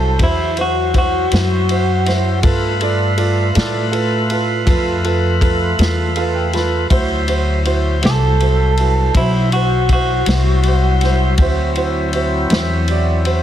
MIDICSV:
0, 0, Header, 1, 6, 480
1, 0, Start_track
1, 0, Tempo, 746269
1, 1567, Time_signature, 12, 3, 24, 8
1, 8637, End_track
2, 0, Start_track
2, 0, Title_t, "Clean electric guitar"
2, 0, Program_c, 0, 27
2, 0, Note_on_c, 0, 69, 81
2, 114, Note_off_c, 0, 69, 0
2, 150, Note_on_c, 0, 64, 75
2, 372, Note_off_c, 0, 64, 0
2, 393, Note_on_c, 0, 66, 65
2, 613, Note_off_c, 0, 66, 0
2, 631, Note_on_c, 0, 66, 77
2, 1553, Note_off_c, 0, 66, 0
2, 5184, Note_on_c, 0, 69, 85
2, 5873, Note_off_c, 0, 69, 0
2, 5898, Note_on_c, 0, 64, 78
2, 6125, Note_off_c, 0, 64, 0
2, 6131, Note_on_c, 0, 66, 69
2, 6361, Note_off_c, 0, 66, 0
2, 6385, Note_on_c, 0, 66, 84
2, 7789, Note_off_c, 0, 66, 0
2, 8637, End_track
3, 0, Start_track
3, 0, Title_t, "Grand piano"
3, 0, Program_c, 1, 0
3, 0, Note_on_c, 1, 64, 51
3, 0, Note_on_c, 1, 66, 48
3, 0, Note_on_c, 1, 72, 52
3, 70, Note_off_c, 1, 64, 0
3, 70, Note_off_c, 1, 66, 0
3, 71, Note_off_c, 1, 72, 0
3, 130, Note_on_c, 1, 64, 54
3, 132, Note_on_c, 1, 66, 50
3, 140, Note_on_c, 1, 72, 59
3, 309, Note_off_c, 1, 64, 0
3, 310, Note_off_c, 1, 66, 0
3, 313, Note_off_c, 1, 72, 0
3, 368, Note_on_c, 1, 64, 50
3, 374, Note_on_c, 1, 66, 42
3, 374, Note_on_c, 1, 72, 58
3, 548, Note_off_c, 1, 64, 0
3, 551, Note_off_c, 1, 66, 0
3, 551, Note_off_c, 1, 72, 0
3, 602, Note_on_c, 1, 64, 52
3, 612, Note_on_c, 1, 66, 45
3, 614, Note_on_c, 1, 72, 57
3, 784, Note_off_c, 1, 64, 0
3, 790, Note_off_c, 1, 66, 0
3, 791, Note_off_c, 1, 72, 0
3, 845, Note_on_c, 1, 64, 48
3, 848, Note_on_c, 1, 66, 47
3, 853, Note_on_c, 1, 72, 58
3, 1026, Note_off_c, 1, 64, 0
3, 1028, Note_off_c, 1, 66, 0
3, 1030, Note_off_c, 1, 72, 0
3, 1092, Note_on_c, 1, 64, 51
3, 1093, Note_on_c, 1, 66, 47
3, 1098, Note_on_c, 1, 72, 58
3, 1270, Note_off_c, 1, 64, 0
3, 1270, Note_off_c, 1, 66, 0
3, 1273, Note_off_c, 1, 72, 0
3, 1324, Note_on_c, 1, 64, 60
3, 1326, Note_on_c, 1, 66, 57
3, 1335, Note_on_c, 1, 72, 69
3, 1506, Note_off_c, 1, 64, 0
3, 1507, Note_off_c, 1, 66, 0
3, 1511, Note_off_c, 1, 72, 0
3, 1555, Note_on_c, 1, 65, 68
3, 1564, Note_on_c, 1, 69, 64
3, 1569, Note_on_c, 1, 71, 79
3, 1741, Note_off_c, 1, 65, 0
3, 1745, Note_off_c, 1, 69, 0
3, 1748, Note_off_c, 1, 71, 0
3, 1807, Note_on_c, 1, 65, 60
3, 1813, Note_on_c, 1, 69, 57
3, 1818, Note_on_c, 1, 74, 68
3, 1987, Note_off_c, 1, 65, 0
3, 1990, Note_off_c, 1, 69, 0
3, 1993, Note_off_c, 1, 74, 0
3, 2042, Note_on_c, 1, 65, 61
3, 2042, Note_on_c, 1, 69, 59
3, 2046, Note_on_c, 1, 74, 68
3, 2224, Note_off_c, 1, 65, 0
3, 2225, Note_off_c, 1, 69, 0
3, 2226, Note_off_c, 1, 74, 0
3, 2280, Note_on_c, 1, 65, 60
3, 2287, Note_on_c, 1, 69, 54
3, 2290, Note_on_c, 1, 74, 69
3, 2463, Note_off_c, 1, 65, 0
3, 2467, Note_off_c, 1, 69, 0
3, 2469, Note_off_c, 1, 74, 0
3, 2517, Note_on_c, 1, 65, 64
3, 2520, Note_on_c, 1, 69, 55
3, 2526, Note_on_c, 1, 71, 67
3, 2702, Note_off_c, 1, 65, 0
3, 2703, Note_off_c, 1, 69, 0
3, 2707, Note_off_c, 1, 71, 0
3, 2769, Note_on_c, 1, 65, 62
3, 2772, Note_on_c, 1, 69, 53
3, 2777, Note_on_c, 1, 71, 64
3, 2948, Note_off_c, 1, 65, 0
3, 2949, Note_off_c, 1, 69, 0
3, 2952, Note_off_c, 1, 71, 0
3, 2995, Note_on_c, 1, 65, 66
3, 3003, Note_on_c, 1, 71, 68
3, 3004, Note_on_c, 1, 69, 57
3, 3181, Note_off_c, 1, 65, 0
3, 3185, Note_off_c, 1, 69, 0
3, 3185, Note_off_c, 1, 71, 0
3, 3241, Note_on_c, 1, 65, 58
3, 3249, Note_on_c, 1, 69, 56
3, 3251, Note_on_c, 1, 71, 71
3, 3424, Note_off_c, 1, 65, 0
3, 3428, Note_off_c, 1, 69, 0
3, 3429, Note_off_c, 1, 71, 0
3, 3479, Note_on_c, 1, 65, 64
3, 3484, Note_on_c, 1, 69, 56
3, 3488, Note_on_c, 1, 71, 68
3, 3663, Note_off_c, 1, 65, 0
3, 3665, Note_off_c, 1, 69, 0
3, 3667, Note_off_c, 1, 71, 0
3, 3723, Note_on_c, 1, 65, 61
3, 3729, Note_on_c, 1, 69, 54
3, 3730, Note_on_c, 1, 71, 72
3, 3905, Note_off_c, 1, 65, 0
3, 3907, Note_off_c, 1, 69, 0
3, 3908, Note_off_c, 1, 71, 0
3, 3968, Note_on_c, 1, 69, 56
3, 3969, Note_on_c, 1, 77, 56
3, 3971, Note_on_c, 1, 65, 59
3, 3973, Note_on_c, 1, 71, 69
3, 4079, Note_off_c, 1, 77, 0
3, 4082, Note_on_c, 1, 79, 54
3, 4147, Note_off_c, 1, 69, 0
3, 4148, Note_off_c, 1, 65, 0
3, 4150, Note_off_c, 1, 71, 0
3, 4196, Note_off_c, 1, 79, 0
3, 4201, Note_on_c, 1, 65, 58
3, 4204, Note_on_c, 1, 69, 54
3, 4213, Note_on_c, 1, 83, 55
3, 4214, Note_on_c, 1, 71, 69
3, 4384, Note_off_c, 1, 65, 0
3, 4385, Note_off_c, 1, 69, 0
3, 4390, Note_off_c, 1, 71, 0
3, 4433, Note_off_c, 1, 83, 0
3, 4437, Note_on_c, 1, 64, 71
3, 4447, Note_on_c, 1, 66, 69
3, 4448, Note_on_c, 1, 72, 81
3, 4622, Note_off_c, 1, 64, 0
3, 4626, Note_off_c, 1, 66, 0
3, 4627, Note_off_c, 1, 72, 0
3, 4676, Note_on_c, 1, 64, 67
3, 4685, Note_on_c, 1, 66, 57
3, 4690, Note_on_c, 1, 72, 70
3, 4861, Note_off_c, 1, 64, 0
3, 4865, Note_off_c, 1, 66, 0
3, 4868, Note_off_c, 1, 72, 0
3, 4922, Note_on_c, 1, 64, 67
3, 4927, Note_on_c, 1, 66, 60
3, 4930, Note_on_c, 1, 72, 71
3, 5104, Note_off_c, 1, 64, 0
3, 5106, Note_off_c, 1, 66, 0
3, 5108, Note_off_c, 1, 72, 0
3, 5156, Note_on_c, 1, 64, 52
3, 5158, Note_on_c, 1, 66, 51
3, 5166, Note_on_c, 1, 72, 59
3, 5341, Note_off_c, 1, 64, 0
3, 5342, Note_off_c, 1, 66, 0
3, 5346, Note_off_c, 1, 72, 0
3, 5407, Note_on_c, 1, 64, 51
3, 5410, Note_on_c, 1, 66, 50
3, 5414, Note_on_c, 1, 72, 58
3, 5586, Note_off_c, 1, 64, 0
3, 5588, Note_off_c, 1, 66, 0
3, 5590, Note_off_c, 1, 72, 0
3, 5651, Note_on_c, 1, 64, 53
3, 5656, Note_on_c, 1, 66, 48
3, 5661, Note_on_c, 1, 71, 54
3, 5828, Note_off_c, 1, 64, 0
3, 5831, Note_off_c, 1, 66, 0
3, 5833, Note_off_c, 1, 71, 0
3, 5889, Note_on_c, 1, 64, 56
3, 5891, Note_on_c, 1, 72, 62
3, 5892, Note_on_c, 1, 66, 50
3, 6067, Note_off_c, 1, 64, 0
3, 6068, Note_off_c, 1, 72, 0
3, 6069, Note_off_c, 1, 66, 0
3, 6136, Note_on_c, 1, 64, 50
3, 6144, Note_on_c, 1, 66, 47
3, 6147, Note_on_c, 1, 72, 56
3, 6310, Note_off_c, 1, 64, 0
3, 6314, Note_off_c, 1, 66, 0
3, 6316, Note_off_c, 1, 72, 0
3, 6380, Note_on_c, 1, 64, 53
3, 6384, Note_on_c, 1, 66, 50
3, 6393, Note_on_c, 1, 72, 59
3, 6553, Note_off_c, 1, 64, 0
3, 6555, Note_off_c, 1, 66, 0
3, 6559, Note_off_c, 1, 72, 0
3, 6608, Note_on_c, 1, 66, 49
3, 6610, Note_on_c, 1, 64, 52
3, 6616, Note_on_c, 1, 72, 60
3, 6787, Note_off_c, 1, 64, 0
3, 6787, Note_off_c, 1, 66, 0
3, 6791, Note_off_c, 1, 72, 0
3, 6856, Note_on_c, 1, 64, 55
3, 6866, Note_on_c, 1, 66, 47
3, 6867, Note_on_c, 1, 72, 55
3, 7031, Note_off_c, 1, 64, 0
3, 7036, Note_off_c, 1, 66, 0
3, 7036, Note_off_c, 1, 72, 0
3, 7097, Note_on_c, 1, 66, 58
3, 7099, Note_on_c, 1, 64, 61
3, 7104, Note_on_c, 1, 72, 72
3, 7271, Note_off_c, 1, 66, 0
3, 7272, Note_off_c, 1, 64, 0
3, 7275, Note_off_c, 1, 72, 0
3, 7336, Note_on_c, 1, 64, 75
3, 7343, Note_on_c, 1, 66, 64
3, 7345, Note_on_c, 1, 72, 80
3, 7511, Note_off_c, 1, 64, 0
3, 7514, Note_off_c, 1, 66, 0
3, 7515, Note_off_c, 1, 72, 0
3, 7565, Note_on_c, 1, 64, 65
3, 7571, Note_on_c, 1, 66, 54
3, 7573, Note_on_c, 1, 72, 71
3, 7745, Note_off_c, 1, 64, 0
3, 7748, Note_off_c, 1, 66, 0
3, 7749, Note_off_c, 1, 72, 0
3, 7811, Note_on_c, 1, 64, 64
3, 7813, Note_on_c, 1, 66, 56
3, 7816, Note_on_c, 1, 72, 71
3, 7988, Note_off_c, 1, 64, 0
3, 7989, Note_off_c, 1, 66, 0
3, 7990, Note_off_c, 1, 72, 0
3, 8045, Note_on_c, 1, 64, 64
3, 8045, Note_on_c, 1, 66, 62
3, 8054, Note_on_c, 1, 72, 71
3, 8225, Note_off_c, 1, 64, 0
3, 8225, Note_off_c, 1, 66, 0
3, 8230, Note_off_c, 1, 72, 0
3, 8293, Note_on_c, 1, 64, 63
3, 8298, Note_on_c, 1, 66, 57
3, 8299, Note_on_c, 1, 74, 67
3, 8469, Note_off_c, 1, 64, 0
3, 8472, Note_off_c, 1, 66, 0
3, 8472, Note_off_c, 1, 74, 0
3, 8521, Note_on_c, 1, 64, 60
3, 8527, Note_on_c, 1, 66, 53
3, 8532, Note_on_c, 1, 72, 70
3, 8637, Note_off_c, 1, 64, 0
3, 8637, Note_off_c, 1, 66, 0
3, 8637, Note_off_c, 1, 72, 0
3, 8637, End_track
4, 0, Start_track
4, 0, Title_t, "Tonewheel organ"
4, 0, Program_c, 2, 16
4, 0, Note_on_c, 2, 54, 59
4, 0, Note_on_c, 2, 64, 60
4, 0, Note_on_c, 2, 72, 60
4, 1542, Note_off_c, 2, 72, 0
4, 1543, Note_off_c, 2, 54, 0
4, 1543, Note_off_c, 2, 64, 0
4, 1567, Note_on_c, 2, 57, 60
4, 1570, Note_on_c, 2, 65, 60
4, 1571, Note_on_c, 2, 71, 61
4, 4420, Note_off_c, 2, 57, 0
4, 4422, Note_off_c, 2, 65, 0
4, 4422, Note_off_c, 2, 71, 0
4, 4442, Note_on_c, 2, 64, 63
4, 4446, Note_on_c, 2, 72, 62
4, 4448, Note_on_c, 2, 54, 60
4, 7297, Note_off_c, 2, 64, 0
4, 7299, Note_off_c, 2, 72, 0
4, 7300, Note_off_c, 2, 54, 0
4, 7314, Note_on_c, 2, 54, 59
4, 7317, Note_on_c, 2, 60, 60
4, 7318, Note_on_c, 2, 64, 63
4, 8637, Note_off_c, 2, 54, 0
4, 8637, Note_off_c, 2, 60, 0
4, 8637, Note_off_c, 2, 64, 0
4, 8637, End_track
5, 0, Start_track
5, 0, Title_t, "Upright bass"
5, 0, Program_c, 3, 32
5, 0, Note_on_c, 3, 36, 86
5, 105, Note_off_c, 3, 36, 0
5, 127, Note_on_c, 3, 40, 78
5, 826, Note_off_c, 3, 40, 0
5, 850, Note_on_c, 3, 42, 83
5, 1547, Note_off_c, 3, 42, 0
5, 1567, Note_on_c, 3, 43, 74
5, 2265, Note_off_c, 3, 43, 0
5, 2290, Note_on_c, 3, 45, 92
5, 2987, Note_off_c, 3, 45, 0
5, 3004, Note_on_c, 3, 41, 77
5, 3703, Note_off_c, 3, 41, 0
5, 3722, Note_on_c, 3, 40, 91
5, 4422, Note_off_c, 3, 40, 0
5, 4445, Note_on_c, 3, 38, 80
5, 5143, Note_off_c, 3, 38, 0
5, 5166, Note_on_c, 3, 36, 90
5, 5864, Note_off_c, 3, 36, 0
5, 5882, Note_on_c, 3, 35, 81
5, 6582, Note_off_c, 3, 35, 0
5, 6605, Note_on_c, 3, 36, 91
5, 7303, Note_off_c, 3, 36, 0
5, 7318, Note_on_c, 3, 38, 81
5, 8020, Note_off_c, 3, 38, 0
5, 8043, Note_on_c, 3, 40, 92
5, 8637, Note_off_c, 3, 40, 0
5, 8637, End_track
6, 0, Start_track
6, 0, Title_t, "Drums"
6, 124, Note_on_c, 9, 36, 97
6, 124, Note_on_c, 9, 51, 73
6, 188, Note_off_c, 9, 51, 0
6, 189, Note_off_c, 9, 36, 0
6, 365, Note_on_c, 9, 51, 52
6, 429, Note_off_c, 9, 51, 0
6, 605, Note_on_c, 9, 51, 58
6, 606, Note_on_c, 9, 36, 72
6, 669, Note_off_c, 9, 51, 0
6, 670, Note_off_c, 9, 36, 0
6, 845, Note_on_c, 9, 51, 76
6, 862, Note_on_c, 9, 38, 97
6, 910, Note_off_c, 9, 51, 0
6, 926, Note_off_c, 9, 38, 0
6, 1087, Note_on_c, 9, 51, 60
6, 1151, Note_off_c, 9, 51, 0
6, 1326, Note_on_c, 9, 51, 59
6, 1343, Note_on_c, 9, 38, 29
6, 1391, Note_off_c, 9, 51, 0
6, 1407, Note_off_c, 9, 38, 0
6, 1563, Note_on_c, 9, 51, 80
6, 1566, Note_on_c, 9, 36, 104
6, 1627, Note_off_c, 9, 51, 0
6, 1630, Note_off_c, 9, 36, 0
6, 1804, Note_on_c, 9, 51, 64
6, 1869, Note_off_c, 9, 51, 0
6, 2042, Note_on_c, 9, 51, 62
6, 2107, Note_off_c, 9, 51, 0
6, 2284, Note_on_c, 9, 51, 78
6, 2300, Note_on_c, 9, 38, 93
6, 2348, Note_off_c, 9, 51, 0
6, 2365, Note_off_c, 9, 38, 0
6, 2527, Note_on_c, 9, 51, 61
6, 2591, Note_off_c, 9, 51, 0
6, 2764, Note_on_c, 9, 51, 59
6, 2828, Note_off_c, 9, 51, 0
6, 3002, Note_on_c, 9, 36, 104
6, 3004, Note_on_c, 9, 51, 77
6, 3067, Note_off_c, 9, 36, 0
6, 3069, Note_off_c, 9, 51, 0
6, 3244, Note_on_c, 9, 51, 50
6, 3308, Note_off_c, 9, 51, 0
6, 3482, Note_on_c, 9, 36, 72
6, 3484, Note_on_c, 9, 51, 60
6, 3546, Note_off_c, 9, 36, 0
6, 3548, Note_off_c, 9, 51, 0
6, 3723, Note_on_c, 9, 51, 73
6, 3740, Note_on_c, 9, 38, 100
6, 3787, Note_off_c, 9, 51, 0
6, 3804, Note_off_c, 9, 38, 0
6, 3959, Note_on_c, 9, 51, 55
6, 4024, Note_off_c, 9, 51, 0
6, 4201, Note_on_c, 9, 51, 53
6, 4218, Note_on_c, 9, 38, 29
6, 4266, Note_off_c, 9, 51, 0
6, 4282, Note_off_c, 9, 38, 0
6, 4440, Note_on_c, 9, 36, 97
6, 4441, Note_on_c, 9, 51, 72
6, 4505, Note_off_c, 9, 36, 0
6, 4505, Note_off_c, 9, 51, 0
6, 4680, Note_on_c, 9, 51, 60
6, 4745, Note_off_c, 9, 51, 0
6, 4922, Note_on_c, 9, 51, 58
6, 4987, Note_off_c, 9, 51, 0
6, 5162, Note_on_c, 9, 51, 77
6, 5178, Note_on_c, 9, 38, 102
6, 5226, Note_off_c, 9, 51, 0
6, 5243, Note_off_c, 9, 38, 0
6, 5405, Note_on_c, 9, 51, 58
6, 5469, Note_off_c, 9, 51, 0
6, 5643, Note_on_c, 9, 51, 60
6, 5708, Note_off_c, 9, 51, 0
6, 5881, Note_on_c, 9, 51, 80
6, 5882, Note_on_c, 9, 36, 100
6, 5946, Note_off_c, 9, 51, 0
6, 5947, Note_off_c, 9, 36, 0
6, 6123, Note_on_c, 9, 51, 58
6, 6188, Note_off_c, 9, 51, 0
6, 6361, Note_on_c, 9, 51, 60
6, 6362, Note_on_c, 9, 36, 73
6, 6425, Note_off_c, 9, 51, 0
6, 6426, Note_off_c, 9, 36, 0
6, 6600, Note_on_c, 9, 51, 84
6, 6616, Note_on_c, 9, 38, 103
6, 6664, Note_off_c, 9, 51, 0
6, 6681, Note_off_c, 9, 38, 0
6, 6839, Note_on_c, 9, 51, 59
6, 6904, Note_off_c, 9, 51, 0
6, 7081, Note_on_c, 9, 51, 63
6, 7098, Note_on_c, 9, 38, 29
6, 7145, Note_off_c, 9, 51, 0
6, 7162, Note_off_c, 9, 38, 0
6, 7317, Note_on_c, 9, 51, 75
6, 7321, Note_on_c, 9, 36, 96
6, 7381, Note_off_c, 9, 51, 0
6, 7385, Note_off_c, 9, 36, 0
6, 7560, Note_on_c, 9, 51, 57
6, 7624, Note_off_c, 9, 51, 0
6, 7800, Note_on_c, 9, 51, 55
6, 7864, Note_off_c, 9, 51, 0
6, 8039, Note_on_c, 9, 51, 72
6, 8056, Note_on_c, 9, 38, 100
6, 8104, Note_off_c, 9, 51, 0
6, 8120, Note_off_c, 9, 38, 0
6, 8282, Note_on_c, 9, 51, 56
6, 8346, Note_off_c, 9, 51, 0
6, 8522, Note_on_c, 9, 51, 57
6, 8587, Note_off_c, 9, 51, 0
6, 8637, End_track
0, 0, End_of_file